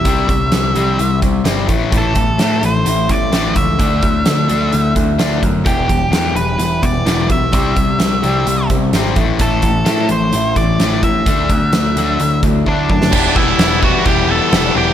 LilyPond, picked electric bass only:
\new Staff \with { instrumentName = "Picked electric bass" } { \clef bass \time 4/4 \key e \minor \tempo 4 = 128 c,8 c,8 c,8 c,8 c,8 c,8 g,,8 a,,8 | a,,8 a,,8 a,8 a,,8 a,,8 a,,8 a,,8 cis,8 | d,8 d,8 d,8 d,8 d,8 d,8 d,8 fis,8 | e,,8 e,,8 e,8 e,,8 e,,8 e,,8 e,,8 b,,8 |
c,8 c,8 c,8 c,8 c,8 c,8 gis,,8 a,,8 | a,,8 a,,8 a,8 a,,8 a,,8 a,,8 a,,8 a,8 | d,8 d,8 d,8 d,8 d,8 d,8 d,8 fis,8 | e,,8 e,,8 e,,4 e,,4 e,,8 e,,8 | }